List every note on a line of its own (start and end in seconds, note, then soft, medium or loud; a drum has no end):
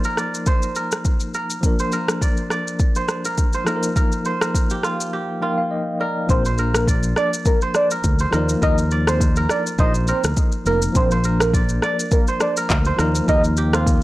0.00 1.32 F3 medium
0.00 1.30 A#3 medium
0.00 1.30 D#4 medium
0.00 1.31 A#4 medium
0.00 0.47 C5 medium
0.00 0.18 D5 medium
0.00 shaker medium
0.05 0.76 A#4 medium
0.17 1.29 D5 medium
0.17 cross-stick medium
0.17 shaker soft
0.35 shaker medium
0.46 1.66 C5 medium
0.46 kick loud
0.46 shaker medium
0.62 shaker medium
0.75 1.34 A#4 medium
0.75 shaker medium
0.92 cross-stick medium
0.92 shaker medium
1.05 kick medium
1.05 shaker medium
1.20 shaker medium
1.34 1.92 A#4 medium
1.34 shaker medium
1.50 shaker medium
1.61 3.62 F3 medium
1.61 3.63 A#3 medium
1.61 3.63 D4 medium
1.61 kick loud
1.61 shaker medium
1.66 3.64 A#4 medium
1.79 2.96 C5 medium
1.79 shaker medium
1.92 3.20 A#4 medium
1.92 shaker medium
2.08 cross-stick loud
2.08 shaker medium
2.22 2.51 D5 medium
2.22 kick loud
2.22 shaker loud
2.37 shaker medium
2.50 3.62 D5 medium
2.50 cross-stick medium
2.50 shaker soft
2.68 shaker medium
2.79 kick loud
2.79 shaker medium
2.95 3.54 C5 medium
2.95 shaker medium
3.08 cross-stick medium
3.08 shaker medium
3.25 3.67 A#4 medium
3.25 shaker medium
3.38 kick medium
3.38 shaker medium
3.53 4.25 C5 medium
3.53 shaker medium
3.65 5.37 F3 medium
3.65 5.38 A#3 medium
3.65 5.39 D#4 medium
3.65 3.96 A#4 medium
3.65 cross-stick medium
3.65 shaker soft
3.70 3.75 A4 medium
3.76 5.42 A#4 medium
3.83 shaker medium
3.96 4.41 A#4 medium
3.96 kick loud
3.96 shaker medium
4.12 shaker medium
4.25 5.45 C5 medium
4.25 shaker medium
4.41 5.69 A#4 medium
4.41 cross-stick loud
4.41 shaker medium
4.55 kick loud
4.55 shaker loud
4.70 5.13 G4 medium
4.70 shaker medium
4.83 5.42 F4 medium
4.83 cross-stick medium
4.83 shaker soft
5.01 shaker medium
5.13 6.54 G4 medium
5.41 6.25 F3 medium
5.41 6.27 A#3 medium
5.41 6.29 D#4 medium
5.41 6.94 F4 medium
5.41 6.30 A#4 medium
5.41 5.57 G5 medium
5.58 5.70 F5 medium
5.71 5.98 D#5 medium
6.00 6.58 A#4 medium
6.00 6.27 D5 medium
6.27 7.13 A#1 medium
6.27 8.28 F3 medium
6.27 8.29 A#3 medium
6.27 8.29 D4 medium
6.27 6.43 C5 loud
6.27 kick loud
6.27 shaker medium
6.32 8.30 A#4 medium
6.45 7.62 C5 medium
6.45 shaker medium
6.58 7.86 A#4 medium
6.58 shaker medium
6.74 6.86 A#4 medium
6.74 cross-stick loud
6.74 shaker medium
6.88 7.17 D5 medium
6.88 kick loud
6.88 shaker loud
7.03 shaker medium
7.16 8.28 D5 medium
7.16 7.31 D5 medium
7.16 cross-stick medium
7.16 shaker soft
7.34 shaker medium
7.45 7.60 A#4 medium
7.45 kick loud
7.45 shaker medium
7.61 8.20 C5 medium
7.61 shaker medium
7.74 7.89 D5 medium
7.74 cross-stick medium
7.74 shaker medium
7.91 8.33 A#4 medium
7.91 shaker medium
8.04 8.25 D2 medium
8.04 kick medium
8.04 shaker medium
8.19 9.07 C5 medium
8.19 shaker medium
8.30 8.54 D#2 loud
8.30 10.61 F3 medium
8.30 10.62 A#3 medium
8.30 10.62 D#4 medium
8.30 8.62 A#4 medium
8.30 cross-stick medium
8.30 shaker medium
8.36 10.63 A#4 medium
8.49 shaker medium
8.62 9.46 D#2 loud
8.62 9.37 A#4 medium
8.62 8.76 D#5 loud
8.62 kick loud
8.62 shaker medium
8.78 shaker medium
8.91 9.50 D5 medium
8.91 shaker medium
9.07 9.79 C5 medium
9.07 9.19 C5 medium
9.07 cross-stick loud
9.07 shaker medium
9.21 kick loud
9.21 shaker loud
9.36 10.08 A#4 medium
9.36 shaker medium
9.49 10.61 D5 medium
9.49 9.64 D5 medium
9.49 cross-stick medium
9.49 shaker soft
9.67 shaker medium
9.78 10.11 A#1 medium
9.78 10.98 C5 medium
9.78 9.93 D#5 loud
9.78 kick loud
9.78 shaker medium
9.94 shaker medium
10.07 10.66 A#4 medium
10.07 10.22 C5 medium
10.07 shaker medium
10.24 10.33 D2 medium
10.24 cross-stick medium
10.24 shaker loud
10.37 kick loud
10.37 shaker medium
10.52 shaker medium
10.65 10.87 F1 medium
10.65 10.91 F3 medium
10.65 10.93 A#3 soft
10.65 10.95 D#4 soft
10.65 11.24 A#4 medium
10.65 10.80 A#4 medium
10.65 10.96 A#4 medium
10.65 shaker medium
10.82 shaker medium
10.93 11.79 A#1 loud
10.93 12.94 F3 medium
10.93 12.95 A#3 medium
10.93 12.95 D4 medium
10.93 11.09 C5 loud
10.93 kick loud
10.93 shaker medium
10.98 12.96 A#4 medium
11.11 12.28 C5 medium
11.11 shaker medium
11.24 12.52 A#4 medium
11.24 shaker medium
11.40 11.52 A#4 medium
11.40 cross-stick loud
11.40 shaker medium
11.54 11.83 D5 medium
11.54 kick loud
11.54 shaker loud
11.69 shaker medium
11.82 12.94 D5 loud
11.82 11.97 D5 medium
11.82 cross-stick medium
11.82 shaker medium
12.00 shaker medium
12.11 12.26 A#4 medium
12.11 kick loud
12.11 shaker medium
12.27 12.86 C5 medium
12.27 shaker medium
12.40 12.55 D5 medium
12.40 cross-stick loud
12.40 shaker medium
12.57 12.99 A#4 medium
12.57 shaker medium
12.70 12.91 D2 loud
12.70 kick medium
12.70 clap loud
12.70 shaker medium
12.85 14.03 C5 medium
12.85 shaker medium
12.97 13.20 D#2 loud
12.97 14.03 F3 medium
12.97 14.03 A#3 medium
12.97 14.03 D#4 medium
12.97 13.28 A#4 medium
12.97 cross-stick medium
12.97 shaker soft
13.02 14.03 A#4 medium
13.15 shaker medium
13.28 14.03 D#2 loud
13.28 14.03 A#4 medium
13.28 13.42 D#5 loud
13.28 kick loud
13.28 shaker medium
13.44 shaker medium
13.57 14.03 G4 medium
13.57 shaker medium
13.73 14.03 F4 medium
13.73 13.85 C5 medium
13.73 cross-stick loud
13.73 shaker medium
13.87 kick loud
13.87 shaker loud